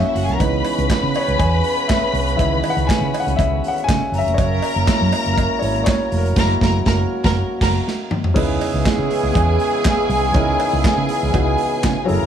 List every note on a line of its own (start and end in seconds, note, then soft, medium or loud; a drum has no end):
0.00 8.19 C#3 medium
0.00 0.37 F#3 medium
0.00 0.42 G#3 medium
0.00 0.37 A#3 medium
0.00 0.42 A#3 medium
0.00 6.09 C#4 medium
0.00 0.42 E4 medium
0.00 0.42 C#5 medium
0.00 0.14 E5 medium
0.00 0.42 F#5 loud
0.08 0.16 E4 medium
0.08 0.16 E5 medium
0.15 0.26 F#1 medium
0.15 0.24 F#4 medium
0.15 0.24 F#5 medium
0.15 open hi-hat medium
0.24 0.32 G#4 medium
0.24 0.32 G#5 medium
0.28 0.38 C2 medium
0.28 closed hi-hat medium
0.33 0.41 A#4 medium
0.33 0.41 A#5 medium
0.38 0.60 C#2 loud
0.38 1.10 E3 medium
0.38 4.10 G#3 medium
0.38 1.10 B3 medium
0.38 4.09 B3 medium
0.38 1.11 D#4 medium
0.38 3.85 B4 loud
0.38 3.85 B5 loud
0.38 kick loud
0.38 closed hi-hat medium
0.38 cowbell medium
0.65 open hi-hat medium
0.65 cowbell medium
0.78 0.88 C#2 medium
0.78 closed hi-hat soft
0.90 muted fingered electric bass stroke soft
0.90 kick loud
0.90 snare loud
0.90 clap medium
0.90 closed hi-hat medium
0.90 cowbell medium
1.03 1.13 C#3 medium
1.14 1.41 C#5 medium
1.14 open hi-hat medium
1.14 cowbell medium
1.28 1.38 C#2 medium
1.28 closed hi-hat soft
1.39 1.60 E2 medium
1.39 1.90 G#5 loud
1.39 kick loud
1.39 closed hi-hat medium
1.39 cowbell medium
1.64 open hi-hat medium
1.78 closed hi-hat soft
1.88 2.12 E5 medium
1.88 kick loud
1.88 snare loud
1.88 clap medium
1.88 closed hi-hat medium
1.88 cowbell medium
2.13 2.34 C2 medium
2.13 open hi-hat medium
2.28 closed hi-hat soft
2.36 2.60 C#2 loud
2.36 4.08 D#3 medium
2.36 4.08 E3 medium
2.36 4.08 B3 medium
2.36 2.72 E5 medium
2.36 kick loud
2.36 closed hi-hat medium
2.40 cowbell medium
2.64 open hi-hat medium
2.64 cowbell medium
2.70 2.88 F#5 loud
2.77 2.86 C#2 loud
2.77 closed hi-hat soft
2.87 3.19 G#5 loud
2.87 muted fingered electric bass stroke soft
2.87 kick loud
2.87 clap medium
2.87 closed hi-hat medium
2.87 cowbell medium
2.91 snare loud
3.01 3.11 C#3 loud
3.14 open hi-hat medium
3.14 cowbell medium
3.20 3.36 F#5 loud
3.27 3.36 C#2 medium
3.27 closed hi-hat medium
3.36 3.59 C#2 medium
3.36 3.68 E5 loud
3.36 kick loud
3.36 closed hi-hat medium
3.36 cowbell medium
3.64 open hi-hat medium
3.68 3.87 F#5 loud
3.78 closed hi-hat soft
3.84 4.20 G#5 loud
3.89 3.99 C#3 loud
3.89 kick loud
3.89 snare loud
3.89 clap medium
3.89 closed hi-hat medium
3.89 cowbell medium
4.12 4.23 F#1 medium
4.12 8.19 F#3 medium
4.12 8.19 A#3 medium
4.12 6.34 A#4 loud
4.12 6.33 A#5 loud
4.12 open hi-hat medium
4.18 4.35 E5 loud
4.26 4.36 F1 loud
4.26 closed hi-hat medium
4.34 5.39 C#5 medium
4.34 kick loud
4.34 closed hi-hat medium
4.38 4.58 F#1 loud
4.38 cowbell medium
4.62 open hi-hat medium
4.62 cowbell medium
4.76 4.85 F#1 medium
4.76 closed hi-hat soft
4.85 5.20 G#3 medium
4.85 5.21 A#3 medium
4.85 5.21 E4 medium
4.85 kick loud
4.85 snare loud
4.85 clap medium
4.85 closed hi-hat medium
4.85 cowbell medium
5.01 5.11 F#2 medium
5.12 open hi-hat medium
5.12 cowbell medium
5.26 5.46 F#1 medium
5.26 closed hi-hat medium
5.33 5.58 A#4 medium
5.38 kick loud
5.38 closed hi-hat medium
5.38 cowbell medium
5.59 5.83 G#1 medium
5.59 5.84 G#3 medium
5.59 5.84 A#3 soft
5.59 5.84 E4 medium
5.59 5.83 C#5 loud
5.59 open hi-hat medium
5.76 closed hi-hat soft
5.84 6.16 C#5 loud
5.84 kick loud
5.84 snare loud
5.84 clap loud
5.84 closed hi-hat medium
5.84 cowbell medium
6.11 6.32 F1 medium
6.11 8.19 F#4 medium
6.11 open hi-hat medium
6.17 7.39 A#4 medium
6.26 closed hi-hat medium
6.36 6.54 F#1 loud
6.36 8.31 G#3 medium
6.36 8.31 A#3 medium
6.36 8.32 E4 medium
6.36 6.54 A#4 loud
6.36 6.55 A#5 loud
6.36 kick loud
6.36 snare loud
6.36 crash medium
6.61 6.79 F#1 loud
6.61 6.79 A#4 loud
6.61 6.79 A#5 loud
6.61 kick loud
6.61 snare loud
6.86 7.04 F#1 loud
6.86 7.03 A#4 loud
6.86 7.03 A#5 medium
6.86 kick loud
6.86 snare loud
7.24 7.41 F#1 loud
7.24 7.41 A#4 loud
7.24 7.41 A#5 medium
7.24 kick loud
7.24 snare loud
7.61 7.78 F#1 medium
7.61 7.78 A#4 loud
7.61 7.78 A#5 loud
7.61 kick loud
7.61 snare loud
7.61 crash medium
7.88 snare medium
8.11 mid tom medium
8.24 floor tom loud
8.34 8.56 C#2 loud
8.34 10.30 C#3 medium
8.34 12.26 C#3 medium
8.34 12.26 E3 loud
8.34 11.79 G#3 medium
8.34 12.05 G#3 medium
8.34 12.05 B3 medium
8.34 10.30 C#4 medium
8.34 11.80 C#4 medium
8.34 10.30 D#4 medium
8.34 10.31 E4 medium
8.34 11.80 E4 medium
8.34 11.79 G#4 medium
8.34 12.05 G#4 medium
8.34 10.31 B4 medium
8.34 12.05 G#5 medium
8.34 kick loud
8.34 crash loud
8.34 cowbell medium
8.61 open hi-hat medium
8.61 cowbell medium
8.74 8.83 C#2 medium
8.86 kick loud
8.86 snare loud
8.86 clap medium
8.86 closed hi-hat medium
8.86 cowbell medium
8.99 9.08 C#3 loud
9.11 open hi-hat medium
9.23 9.33 C#2 medium
9.35 9.56 E2 medium
9.35 kick loud
9.35 closed hi-hat medium
9.35 cowbell medium
9.60 open hi-hat medium
9.85 kick loud
9.85 snare loud
9.85 clap loud
9.85 closed hi-hat medium
9.85 cowbell medium
10.09 10.30 C2 loud
10.09 open hi-hat medium
10.34 10.55 C#2 loud
10.34 11.31 C#3 medium
10.34 11.31 C#4 medium
10.34 11.31 D#4 medium
10.34 11.32 E4 medium
10.34 11.33 A#4 medium
10.34 kick loud
10.34 closed hi-hat medium
10.34 cowbell medium
10.60 open hi-hat medium
10.60 cowbell medium
10.73 10.82 C#2 loud
10.84 muted fingered electric bass stroke soft
10.84 kick loud
10.84 snare loud
10.84 clap medium
10.84 closed hi-hat medium
10.84 cowbell medium
10.98 11.07 C#3 loud
11.09 open hi-hat medium
11.23 11.32 C#2 medium
11.32 11.54 C#2 medium
11.32 12.08 C#3 medium
11.32 12.04 C#4 medium
11.32 12.08 D#4 medium
11.32 12.05 E4 medium
11.32 12.08 F#4 medium
11.32 kick loud
11.32 closed hi-hat medium
11.32 cowbell medium
11.58 open hi-hat medium
11.83 11.95 C#3 loud
11.83 kick loud
11.83 snare loud
11.83 clap loud
11.83 closed hi-hat medium
11.83 cowbell medium
12.05 12.26 F#3 medium
12.05 12.26 C#4 medium
12.05 12.26 E4 medium
12.05 12.26 G#4 medium
12.05 12.15 A4 medium
12.05 12.26 A#4 loud
12.05 12.26 A#5 loud
12.05 open hi-hat medium
12.09 12.20 F#1 loud
12.09 12.26 F#3 medium
12.09 12.26 A#3 medium
12.14 12.26 A#4 medium
12.23 12.26 F1 loud